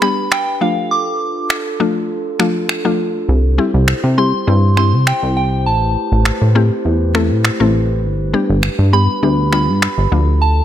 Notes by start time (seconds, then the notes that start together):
Already playing: D4 G4 B4
0.02 G3 B3 D4 G4 B5, finger snap
0.32 G5, finger snap
0.61 F3 A3 D4 F4 A4 F5
0.91 D6
1.50 finger snap
1.80 F3 A3 D4 F4
2.39 F3 A3 D4 F4, finger snap
2.69 finger snap
2.85 F3 A3 D4 F4
3.29 C2 E4 G4 C5
3.58 G3 C4 E4 G4
3.74 C2
3.88 finger snap
4.04 C3
4.18 G3 C4 E4 G4 C6
4.47 G2 G3 C4 E4 G4
4.77 G3 C4 E4 G4 C6, finger snap
4.93 C3
5.07 G5, finger snap
5.23 C2
5.37 G5
5.66 A1 A3 B4 A5
6.12 A1
6.25 finger snap
6.42 A2
6.55 A3 C4 E4 G4
6.85 E2
7.15 A3 C4 E4 A4, finger snap
7.31 A2
7.45 finger snap
7.60 A1 A3 C4 E4 A4
8.04 G1 D4 G4
8.33 G3 B3 D4 G4
8.49 G1
8.63 finger snap
8.79 G2
8.93 G3 B3 D4 G4 B5
9.23 D2 G3 B3 D4 G4
9.52 G3 B3 D4 F4 B5, finger snap
9.68 G2
9.82 finger snap
9.98 G1
10.12 D2 F3 A3 D4 F4 A4
10.42 A5